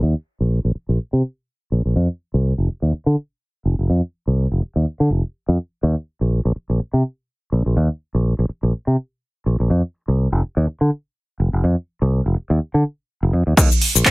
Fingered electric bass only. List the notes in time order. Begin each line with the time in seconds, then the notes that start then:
0.03 D#2
0.40 A#1
0.65 A#1
0.75 muted fingered electric bass stroke
0.89 A#1
1.13 C3
1.72 A#1
1.85 A#1
1.96 F2
2.34 C2
2.58 F1
2.69 muted fingered electric bass stroke
2.82 D#2
2.93 muted fingered electric bass stroke
3.06 D3
3.65 F1
3.79 F1
3.90 F2
4.27 C2
4.52 F1
4.62 muted fingered electric bass stroke
4.76 D#2
5.00 D3
5.10 F1
5.48 F2
5.83 D#2
6.21 A#1
6.45 A#1
6.56 muted fingered electric bass stroke
6.70 A#1
6.80 muted fingered electric bass stroke
6.93 C3
7.52 A#1
7.66 A#1
7.77 D#2
8.14 A#1
8.39 A#1
8.49 muted fingered electric bass stroke
8.63 A#1
8.87 C3
9.46 A#1
9.60 A#1
9.70 F2
10.08 C2
10.32 F1
10.43 muted fingered electric bass stroke
10.57 D#2
10.67 muted fingered electric bass stroke
10.81 D3
11.40 F1
11.53 F1
11.64 F2
12.02 C2
12.26 F1
12.36 muted fingered electric bass stroke
12.50 D#2
12.74 D3
13.23 F1
13.33 F2
13.47 D#2
13.57 D#2
13.95 A#1